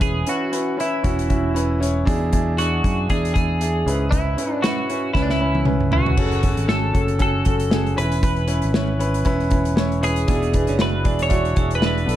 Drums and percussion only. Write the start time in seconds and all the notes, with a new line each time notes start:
0.01 kick, closed hi-hat
0.27 closed hi-hat
0.53 closed hi-hat
0.80 closed hi-hat
1.04 kick, closed hi-hat
1.19 closed hi-hat
1.30 kick, closed hi-hat
1.56 closed hi-hat
1.83 closed hi-hat
2.07 kick, closed hi-hat
2.33 kick, closed hi-hat
2.58 closed hi-hat
2.84 kick, closed hi-hat
3.10 kick, closed hi-hat
3.25 closed hi-hat
3.35 kick, closed hi-hat
3.61 closed hi-hat
3.88 closed hi-hat
4.12 kick, closed hi-hat
4.38 closed hi-hat
4.64 snare, closed hi-hat
4.90 closed hi-hat
5.15 kick, snare
5.29 snare
5.55 high tom
5.65 mid tom
5.80 mid tom
5.92 floor tom
6.06 floor tom
6.17 kick, crash
6.32 closed hi-hat
6.43 kick, closed hi-hat
6.57 closed hi-hat
6.69 snare
6.95 kick, closed hi-hat
7.08 closed hi-hat
7.19 kick, closed hi-hat
7.45 kick, closed hi-hat
7.60 closed hi-hat
7.71 snare
7.86 closed hi-hat
7.98 closed hi-hat
8.12 closed hi-hat
8.23 kick, closed hi-hat
8.36 closed hi-hat
8.48 closed hi-hat
8.62 closed hi-hat
8.74 snare
9.00 closed hi-hat
9.14 closed hi-hat
9.25 kick, closed hi-hat
9.40 closed hi-hat
9.50 kick, closed hi-hat
9.65 closed hi-hat
9.77 snare
9.92 closed hi-hat
10.03 closed hi-hat
10.16 closed hi-hat
10.28 kick, closed hi-hat
10.42 closed hi-hat
10.53 kick, closed hi-hat
10.67 closed hi-hat
10.79 snare
11.05 kick, closed hi-hat
11.19 closed hi-hat
11.30 kick, closed hi-hat
11.45 closed hi-hat
11.56 kick, closed hi-hat
11.71 closed hi-hat
11.82 snare
11.97 closed hi-hat
12.09 closed hi-hat